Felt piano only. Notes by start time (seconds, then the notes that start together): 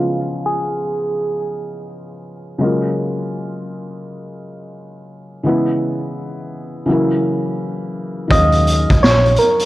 Already playing: C#3 F3 G#3 B3 F4
2.58 C#3 F#3 G#3 A#3
2.64 F4
5.43 C#3 E3 G#3 B3
5.48 E4
6.86 C#3 E3 F#3
6.90 A#3 E4
8.28 D#3 F3 G#3 C#4
8.33 F#3 F5